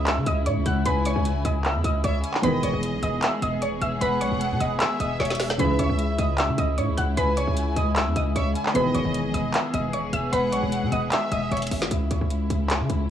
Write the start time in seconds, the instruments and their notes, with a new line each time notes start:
Already playing: 808-style bass C#2, synth keys C#3 C#4 E4 G#4, string section C#3 G#3 E4
0.07 synth pluck E5 E6, clap, closed hi-hat
0.17 808-style bass C#3
0.26 808-style bass C#2, synth pluck D#5 D#6, closed hi-hat
0.46 808-style bass G#2, synth pluck C#5 C#6, closed hi-hat
0.57 808-style bass C#2
0.66 808-style bass C#2, synth pluck F#5 F#6, closed hi-hat
0.85 808-style bass C#2, synth pluck B4 B5, violin section G#5, closed hi-hat
1.05 synth pluck C#5 C#6, closed hi-hat
1.16 808-style bass C#2
1.25 closed hi-hat
1.45 808-style bass C#2, synth pluck D#5 D#6, closed hi-hat
1.64 synth pluck E5 E6, clap, closed hi-hat
1.75 808-style bass E2
1.84 808-style bass C#2, synth pluck D#5 D#6, closed hi-hat
2.04 808-style bass C#2, synth pluck C#5 C#6, violin section E5, closed hi-hat
2.24 violin section G#5, closed hi-hat
2.34 clap
2.42 808-style bass E1, brass ensemble G#2 B2 D#3, synth keys D#3 E3 B3 G#4, string section G#3 B3 G#4, synth pluck B4 B5, violin section D#5, closed hi-hat
2.63 808-style bass E1, synth pluck C#5 C#6, closed hi-hat
2.74 808-style bass E1
2.83 closed hi-hat
2.93 808-style bass B1
3.03 808-style bass E1, synth pluck D#5 D#6, closed hi-hat
3.22 synth pluck E5 E6, clap, closed hi-hat
3.42 808-style bass E1, synth pluck D#5 D#6, closed hi-hat
3.62 808-style bass D#1, synth pluck C#5 C#6, closed hi-hat
3.72 808-style bass E1
3.82 808-style bass E1, synth pluck E5 E6, closed hi-hat
4.01 808-style bass E1, synth pluck B4 B5, violin section F#5, closed hi-hat
4.21 808-style bass B1, synth pluck C#5 C#6, closed hi-hat
4.32 808-style bass E1
4.41 closed hi-hat
4.51 808-style bass B2
4.61 808-style bass E1, synth pluck D#5 D#6, closed hi-hat
4.80 violin section E5, synth pluck E5 E6, clap, closed hi-hat
5.00 808-style bass E1, synth pluck D#5 D#6, closed hi-hat
5.20 808-style bass E1, synth pluck C#5 C#6, snare, closed hi-hat
5.25 closed hi-hat
5.30 snare, closed hi-hat
5.35 closed hi-hat
5.40 snare, closed hi-hat, open hi-hat
5.50 snare, closed hi-hat
5.58 808-style bass C#2, brass ensemble G#2 C#3 E3, synth keys C#3 C#4 E4 G#4, string section C#3 G#3 E4, synth pluck B4 B5, violin section E5, closed hi-hat
5.79 808-style bass C#2, synth pluck C#5 C#6, closed hi-hat
5.90 808-style bass C#2
5.99 closed hi-hat
6.18 808-style bass C#2, synth pluck D#5 D#6, closed hi-hat
6.38 synth pluck E5 E6, clap, closed hi-hat
6.49 808-style bass C#3
6.58 808-style bass C#2, synth pluck D#5 D#6, closed hi-hat
6.78 808-style bass G#2, synth pluck C#5 C#6, closed hi-hat
6.88 808-style bass C#2
6.97 808-style bass C#2, synth pluck F#5 F#6, closed hi-hat
7.17 808-style bass C#2, synth pluck B4 B5, violin section G#5, closed hi-hat
7.37 synth pluck C#5 C#6, closed hi-hat
7.47 808-style bass C#2
7.57 closed hi-hat
7.76 808-style bass C#2, synth pluck D#5 D#6, closed hi-hat
7.96 synth pluck E5 E6, clap, closed hi-hat
8.06 808-style bass E2
8.16 808-style bass C#2, synth pluck D#5 D#6, closed hi-hat
8.36 808-style bass C#2, synth pluck C#5 C#6, violin section E5, closed hi-hat
8.55 violin section G#5, closed hi-hat
8.66 clap
8.74 808-style bass E1, brass ensemble G#2 B2 D#3, synth keys D#3 E3 B3 G#4, string section G#3 B3 G#4, synth pluck B4 B5, violin section D#5, closed hi-hat
8.95 808-style bass E1, synth pluck C#5 C#6, closed hi-hat
9.05 808-style bass E1
9.15 closed hi-hat
9.25 808-style bass B1
9.34 808-style bass E1, synth pluck D#5 D#6, closed hi-hat
9.54 synth pluck E5 E6, clap, closed hi-hat
9.74 808-style bass E1, synth pluck D#5 D#6, closed hi-hat
9.93 808-style bass D#1, synth pluck C#5 C#6, closed hi-hat
10.04 808-style bass E1
10.13 808-style bass E1, synth pluck E5 E6, closed hi-hat
10.33 808-style bass E1, synth pluck B4 B5, violin section F#5, closed hi-hat
10.52 808-style bass B1, synth pluck C#5 C#6, closed hi-hat
10.63 808-style bass E1
10.72 closed hi-hat
10.83 808-style bass B2
10.92 808-style bass E1, synth pluck D#5 D#6, closed hi-hat
11.12 violin section E5, synth pluck E5 E6, clap, closed hi-hat
11.32 808-style bass E1, synth pluck D#5 D#6, closed hi-hat
11.51 808-style bass E1, synth pluck C#5 C#6, closed hi-hat
11.57 closed hi-hat
11.62 closed hi-hat
11.67 closed hi-hat
11.71 808-style bass G#1, closed hi-hat, open hi-hat
11.82 snare
11.91 808-style bass C#2, string section C#3 G#3 E4, closed hi-hat
12.11 808-style bass C#2, closed hi-hat
12.21 808-style bass C#2
12.30 closed hi-hat
12.50 808-style bass C#2, closed hi-hat
12.70 clap, closed hi-hat
12.80 808-style bass C#3
12.90 808-style bass C#2, closed hi-hat